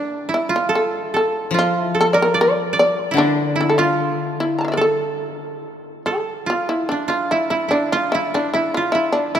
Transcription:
0.00 0.75 A#3 soft
0.00 0.29 D4 medium
0.00 2.31 D4 medium
0.00 0.28 E4 medium
0.29 0.55 E4 medium
0.34 0.51 E4 medium
0.49 1.54 F4 medium
0.56 0.72 F4 medium
0.69 1.13 A4 medium
0.75 1.12 A4 medium
1.14 1.94 A4 medium
1.14 1.53 A4 medium
1.51 3.96 F3 soft
1.51 3.17 F4 medium
1.59 1.80 F4 medium
1.80 1.94 E4 medium
1.95 2.20 A4 medium
2.01 2.12 A4 medium
2.13 3.98 A#4 medium
2.13 2.17 D5 medium
2.22 2.38 A#4 medium
2.34 2.73 D5 medium
2.41 2.76 D5 medium
2.73 4.33 D5 medium
2.79 3.03 D5 medium
3.03 3.15 A#4 medium
3.11 5.61 D3 medium
3.11 3.55 E4 medium
3.17 5.59 D4 medium
3.17 3.55 D4 medium
3.56 3.85 E4 medium
3.61 3.71 E4 medium
3.69 3.76 A4 medium
3.78 4.35 F4 medium
3.78 5.97 F4 medium
4.40 4.72 E4 medium
4.59 4.64 A5 soft
4.59 4.72 A#5 soft
4.65 4.82 E5 soft
4.65 4.68 F5 soft
4.72 4.88 A#4 soft
4.72 4.81 D5 soft
4.77 6.06 A4 medium
4.81 6.02 A4 medium
6.06 6.44 A4 medium
6.06 7.97 A4 medium
6.46 7.08 F4 medium
6.46 6.68 F4 medium
6.69 6.88 E4 medium
6.89 7.08 D4 medium
6.89 7.71 D4 medium
7.08 7.38 F4 medium
7.08 7.29 F4 medium
7.31 7.49 E4 medium
7.31 7.50 E4 medium
7.50 7.70 E4 medium
7.50 7.68 E4 medium
7.68 7.91 D4 medium
7.68 8.34 D4 medium
7.68 7.99 E4 soft
7.92 8.11 F4 medium
7.92 8.21 F4 medium
8.12 8.31 E4 medium
8.12 8.54 E4 medium
8.34 9.40 D4 medium
8.34 8.53 D4 medium
8.54 8.73 E4 medium
8.54 8.83 E4 medium
8.74 8.92 F4 medium
8.74 9.01 F4 medium
8.92 9.12 E4 medium
8.92 9.35 E4 medium
9.12 9.32 D4 medium
9.35 9.40 E4 medium

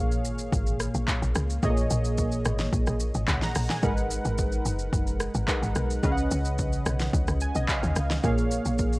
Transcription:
0.00 0.27 A#1 loud
0.00 1.59 A#2 medium
0.00 1.59 A#3 medium
0.00 1.59 G#4 medium
0.00 1.60 C#5 medium
0.00 1.60 F5 medium
0.12 shaker medium
0.25 0.49 G#1 medium
0.25 shaker loud
0.39 shaker medium
0.53 0.89 G#1 loud
0.53 kick loud
0.53 shaker medium
0.67 shaker medium
0.80 cross-stick loud
0.80 shaker medium
0.94 1.06 A#1 medium
0.94 shaker medium
1.08 kick medium
1.08 clap loud
1.08 shaker medium
1.22 1.34 A#1 medium
1.22 shaker medium
1.35 1.59 C#2 loud
1.35 cross-stick loud
1.35 shaker loud
1.50 shaker medium
1.63 1.87 A#1 loud
1.63 3.52 A#2 medium
1.63 1.70 A3 medium
1.63 3.52 G#4 medium
1.63 3.52 C#5 medium
1.63 3.53 D#5 medium
1.63 kick loud
1.63 shaker medium
1.70 3.55 A#3 medium
1.77 shaker medium
1.90 2.38 A#1 loud
1.90 shaker loud
2.04 shaker medium
2.18 kick medium
2.18 shaker medium
2.32 shaker medium
2.45 2.69 G#1 medium
2.45 cross-stick loud
2.45 shaker loud
2.59 snare medium
2.59 shaker medium
2.73 2.85 A#1 medium
2.73 kick loud
2.73 shaker medium
2.87 3.11 A#1 medium
2.87 cross-stick medium
2.87 shaker medium
3.00 shaker medium
3.15 3.26 G#1 loud
3.15 shaker medium
3.28 3.40 C#2 medium
3.28 3.42 F#5 medium
3.28 kick medium
3.28 clap loud
3.28 shaker medium
3.42 3.69 A#5 medium
3.42 snare medium
3.42 shaker soft
3.55 3.68 A#1 loud
3.55 cross-stick loud
3.55 open hi-hat medium
3.55 shaker loud
3.70 3.96 G#5 medium
3.70 snare medium
3.70 shaker medium
3.82 4.19 G#1 loud
3.82 5.45 G#3 medium
3.82 5.45 D#4 medium
3.82 5.45 A#4 medium
3.82 5.45 B4 medium
3.82 5.46 F#5 medium
3.82 kick loud
3.82 shaker medium
3.97 shaker medium
4.10 shaker loud
4.25 4.60 G#1 loud
4.25 shaker medium
4.38 kick loud
4.38 shaker medium
4.52 shaker medium
4.66 4.89 F#1 medium
4.66 shaker loud
4.79 shaker medium
4.93 5.29 F#1 loud
4.93 kick loud
4.93 shaker medium
5.07 shaker medium
5.20 cross-stick loud
5.20 shaker medium
5.35 5.46 G#1 loud
5.35 shaker medium
5.48 6.03 G#3 medium
5.48 6.03 D#4 medium
5.48 6.04 A#4 medium
5.48 6.03 B4 medium
5.48 6.04 F#5 medium
5.48 kick medium
5.48 clap loud
5.48 shaker medium
5.63 5.74 G#1 medium
5.63 shaker medium
5.75 6.00 B1 medium
5.75 cross-stick medium
5.75 shaker medium
5.90 shaker medium
6.03 6.27 C#2 loud
6.03 8.19 C#3 medium
6.03 8.20 C#4 medium
6.03 8.20 B4 medium
6.03 7.55 D#5 medium
6.03 6.11 F5 medium
6.03 kick loud
6.03 shaker medium
6.12 8.24 F#5 medium
6.17 shaker medium
6.31 6.78 C#2 loud
6.31 shaker loud
6.45 shaker medium
6.58 kick loud
6.58 shaker medium
6.72 shaker medium
6.86 7.10 B1 medium
6.86 cross-stick loud
6.86 shaker medium
6.99 snare medium
6.99 shaker medium
7.13 7.26 C#2 loud
7.13 kick loud
7.13 shaker medium
7.28 7.52 C#2 medium
7.28 cross-stick medium
7.28 shaker medium
7.41 7.55 G#5 medium
7.41 shaker medium
7.55 7.67 B1 medium
7.55 7.68 D#5 medium
7.55 shaker medium
7.68 8.20 F5 medium
7.68 kick medium
7.68 clap loud
7.68 shaker medium
7.83 7.94 D#2 loud
7.83 shaker medium
7.96 8.20 C#2 medium
7.96 cross-stick loud
7.96 shaker medium
8.10 snare medium
8.10 shaker medium
8.23 8.60 A#1 loud
8.23 8.99 A#2 medium
8.23 8.99 A#3 medium
8.23 8.99 G#4 medium
8.23 8.99 C#5 medium
8.23 8.99 F5 medium
8.23 kick loud
8.23 shaker medium
8.38 shaker medium
8.51 shaker loud
8.65 8.99 A#1 medium
8.65 shaker medium
8.78 kick medium
8.78 shaker medium
8.93 shaker medium

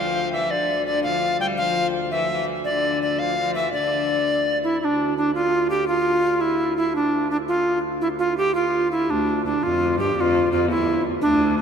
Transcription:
0.00 0.50 D2 medium
0.00 0.34 F3 medium
0.00 0.32 F5 medium
0.33 0.53 E3 medium
0.33 0.52 E5 medium
0.51 4.79 D2 medium
0.51 0.87 D3 medium
0.51 0.86 D5 medium
0.86 1.07 D3 medium
0.86 1.03 D5 medium
1.03 1.40 F3 medium
1.03 1.38 F5 medium
1.40 1.61 G3 medium
1.40 1.46 G5 medium
1.57 2.13 F3 medium
1.57 1.87 F5 loud
2.11 2.30 E3 medium
2.11 2.45 E5 medium
2.32 2.48 E3 medium
2.65 3.23 D3 medium
2.65 2.99 D5 medium
3.02 3.20 D5 medium
3.19 3.38 F3 medium
3.19 3.54 F5 medium
3.38 3.58 F3 medium
3.54 3.74 E3 medium
3.54 3.72 E5 medium
3.73 4.59 D3 medium
3.73 4.59 D5 medium
4.64 4.80 E4 medium
4.81 9.08 D2 medium
4.81 5.14 D4 medium
4.81 4.86 E4 medium
5.17 5.34 D4 medium
5.35 5.68 F4 loud
5.70 5.87 G4 loud
5.88 6.42 F4 loud
6.41 6.76 E4 loud
6.77 6.94 E4 medium
6.96 7.29 D4 medium
7.31 7.37 D4 medium
7.48 7.79 F4 loud
8.01 8.07 E4 medium
8.19 8.36 F4 medium
8.38 8.54 G4 loud
8.55 8.88 F4 medium
8.91 9.12 E4 medium
9.09 9.42 D2 medium
9.09 11.62 D2 medium
9.09 9.44 D4 medium
9.45 9.53 D2 medium
9.45 9.65 D4 medium
9.63 10.00 F2 medium
9.63 9.98 F4 medium
9.98 10.15 G2 medium
9.98 10.16 G4 medium
10.16 10.49 F2 medium
10.16 10.22 G4 medium
10.21 10.51 F4 loud
10.51 10.70 F2 medium
10.51 10.68 F4 medium
10.68 11.04 E2 medium
10.68 11.03 E4 medium
11.22 11.62 D2 medium
11.22 11.55 D4 medium
11.58 11.62 D4 medium

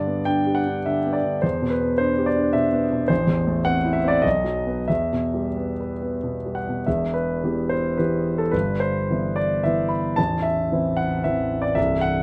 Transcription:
0.00 1.40 G2 soft
0.00 0.19 D3 soft
0.00 0.25 D5 medium
0.07 0.38 B3 soft
0.25 0.58 D4 soft
0.25 0.55 G5 medium
0.47 0.78 G4 soft
0.55 0.85 F#5 medium
0.67 0.98 D4 soft
0.86 1.17 D3 soft
0.86 1.15 E5 medium
1.05 1.36 B3 soft
1.13 1.43 D5 medium
1.23 1.43 D3 soft
1.42 3.06 E2 soft
1.42 1.71 C5 medium
1.62 1.92 B2 soft
1.70 1.99 B4 medium
1.81 2.10 B3 soft
1.98 2.28 D4 soft
1.98 2.26 C5 medium
2.18 2.47 G4 soft
2.26 2.54 D5 medium
2.36 2.66 D4 soft
2.53 2.84 B2 soft
2.53 3.09 E5 medium
2.73 3.02 B3 soft
2.92 3.10 B2 soft
3.08 4.21 A1 medium
3.08 3.64 C5 medium
3.27 3.57 E2 soft
3.47 3.77 A3 soft
3.65 3.97 C4 soft
3.65 3.94 F#5 medium
3.84 4.16 E4 soft
3.93 4.09 E5 medium
4.04 4.25 C4 soft
4.04 4.24 D5 medium
4.22 4.86 B1 medium
4.22 4.88 D#5 medium
4.44 4.80 F#3 soft
4.66 4.87 B3 soft
4.66 4.87 B4 soft
4.88 6.82 E2 soft
4.88 6.55 E5 medium
5.12 5.48 B2 soft
5.34 5.70 G3 soft
5.57 5.93 B3 soft
5.80 6.16 B4 soft
6.02 6.37 B3 soft
6.23 6.58 B2 soft
6.46 6.79 G3 soft
6.55 6.86 F#5 medium
6.69 6.87 B2 soft
6.86 8.50 E1 soft
6.86 8.51 E2 soft
6.86 7.15 E5 soft
7.14 7.71 B4 medium
7.44 7.95 E3 soft
7.44 7.96 B3 soft
7.44 7.96 G4 soft
7.69 7.98 C5 medium
7.97 8.50 E3 soft
7.97 8.50 B3 soft
7.97 8.50 G4 soft
7.97 8.39 B4 medium
8.38 8.53 A4 medium
8.51 10.13 G1 soft
8.51 10.13 G2 soft
8.51 8.80 B4 medium
8.80 9.36 C5 medium
9.10 9.61 E3 soft
9.10 9.61 B3 soft
9.10 9.61 E4 soft
9.36 9.64 D5 medium
9.64 10.14 E3 soft
9.64 10.15 B3 soft
9.64 10.15 E4 soft
9.64 9.91 E5 medium
9.89 10.17 B5 medium
10.16 11.73 A0 soft
10.16 11.73 A1 soft
10.16 10.44 A5 medium
10.42 10.97 E5 medium
10.72 11.21 E3 soft
10.72 11.22 C4 soft
10.72 11.22 E4 soft
10.97 11.24 F#5 medium
11.24 11.74 E3 soft
11.24 11.74 C4 soft
11.24 11.74 E4 soft
11.24 11.64 E5 medium
11.62 11.76 D5 medium
11.75 12.23 C1 soft
11.75 12.23 C2 soft
11.75 12.03 E5 medium
12.01 12.23 F#5 medium

